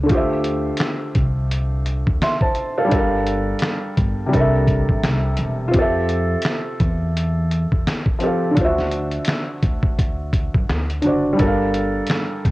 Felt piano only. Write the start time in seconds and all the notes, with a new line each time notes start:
0.03 D3 A3
0.09 F4 G4
0.14 C5 E5
2.22 E5 C6
2.42 C5 A5
2.78 A4 F5
2.85 G3 D4
2.92 A4 A#4
2.99 F5
4.26 C3 G3
4.32 D4 A4
4.37 A#4 E5
5.68 C4 F4
5.75 G4 A4
5.82 E5
8.19 F3 C4 G4
8.24 A4 F5
8.51 D3 D4
8.58 F4 C5
8.64 F#4 E5
11.01 D3 D4 F#4
11.06 C5 D5
11.33 G3 D4
11.40 A4 A#4
11.47 F5